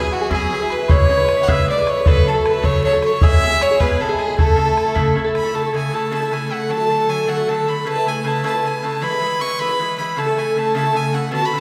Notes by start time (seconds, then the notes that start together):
Already playing: G#4 G#5
0.02 F#3 E4 G#4
0.12 F#4 F#5, bodhran
0.21 F#3 E4 G#4
0.30 B2 F#3 E4 G#4 B5, bodhran
0.35 G#5
0.51 B2 F#3 E4 G#4
0.60 F#3 E4 G#4
0.70 B4 B5, bodhran
0.79 F#3 E4 G#4
0.88 C#3 G#3 E4 B4 C#5 C#6, bodhran
1.05 C#3 D6, bodhran
1.10 G#3 E4 B4 C#6
1.17 G#3 E4 B4
1.25 B5
1.29 C#6, bodhran
1.37 G#3 E4 B4
1.43 F#5
1.47 C#3 G#3 E4 B4 E5 F#6, bodhran
1.52 E6
1.68 C#3 G#3 E4 B4 D5 D6, bodhran
1.78 G#3 E4 B4
1.87 C#5 C#6, bodhran
1.97 G#3 E4 B4
2.06 C#3 F#3 A3 A4 B4 B5, bodhran
2.26 C#3 F#3 A3 A4 A5, bodhran
2.34 F#3 A3 A4
2.46 B4 B5, bodhran
2.53 F#3 A3 A4
2.62 C#3 F#3 A3 A4 C#5 C#6, bodhran
2.84 C#3 F#3 A3 A4 C#5, bodhran
2.93 F#3 A3 A4
3.02 C#5 C#6, bodhran
3.11 F#3 A3 A4
3.21 B2 G#3 E4 G#4 E5 E6, bodhran
3.41 B2 G#3 E4 G#4, bodhran
3.51 G#3 E4 G#4
3.61 C#5 C#6, bodhran
3.71 G#3 E4 G#4
3.80 B2 G#3 E4 G#4 B4 B5, bodhran
4.00 B2 G#3 E4 G#4 A4, bodhran
4.09 G#3 E4 G#4
4.18 G#4 G#5, bodhran
4.28 G#3 E4 G#4
4.37 C#3 A3 E4 A4 A5, bodhran
4.56 C#3 A3 E4 A4
4.65 A3 E4 A4
4.77 bodhran
4.85 A3 E4 A4
4.94 C#3 A3 E4 A4, bodhran
5.15 C#3 A3 E4 A4, bodhran
5.24 A3 E4 A4
5.35 B5, bodhran
5.43 A3 E4 A4
5.53 C#3 A3 E4 A4 A5
5.63 A3 E4 A4
5.72 C#3 A3 E4 A4 G#5
5.91 C#3 A3 E4 A4 A5
6.11 C#3 A3 E4 A4 A5
6.21 A3 E4 A4
6.31 C#3 A3 E4 A4 G#5
6.49 C#3 A3 E4 A4 F#5
6.68 D3 F#3 A3 A4 A5
6.77 F#3 A3 A4
6.88 D3 F#3 A3 A4
7.07 D3 F#3 A3 A4 G#5
7.26 D3 F#3 A3 A4 F#5
7.37 F#3 A3 A4
7.47 D3 F#3 A3 A4 A5
7.67 D3 F#3 A3 A4 B5
7.85 C#3 A3 E4 B4 A5
7.96 A3 E4 B4
8.05 C#3 A3 E4 B4 G#5
8.24 C#3 A3 E4 B4 A5
8.43 C#3 A3 E4 B4 A5
8.53 A3 E4 B4
8.63 C#3 A3 E4 B4 G#5
8.82 C#3 A3 E4 B4 A5
9.01 E3 G#3 E4 B4 B5
9.10 G#3 E4 B4
9.20 E3 G#3 E4 B4
9.39 E3 G#3 E4 B4 C#6
9.59 E3 G#3 E4 B4 B5
9.69 G#3 E4 B4
9.79 E3 G#3 E4 B4
9.98 E3 G#3 E4 B4 B5
10.16 C#3 A3 E4 A4 A5
10.26 A3 E4 A4
10.36 C#3 A3 E4 A4 G#5
10.55 C#3 A3 E4 A4 A5
10.74 C#3 A3 E4 A4 A5
10.84 A3 E4 A4
10.93 C#3 A3 E4 A4 G#5
11.13 C#3 A3 E4 A4 F#5
11.31 B2 D3 B3 F#4 A5
11.41 D3 B3 F#4
11.45 B5
11.52 B2 D3 B3 F#4